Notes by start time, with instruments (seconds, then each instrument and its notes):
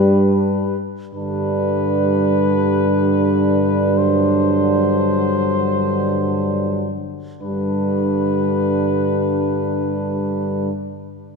Already playing: tuba G2, trombone G3, french horn section D4, euphonium G4, cornet B4
1.14 tuba G2, trombone D3, euphonium G3, french horn section D4, cornet B4
3.96 euphonium F#3, cornet C5
7.42 tuba G2, trombone D3, euphonium G3, french horn section D4, cornet B4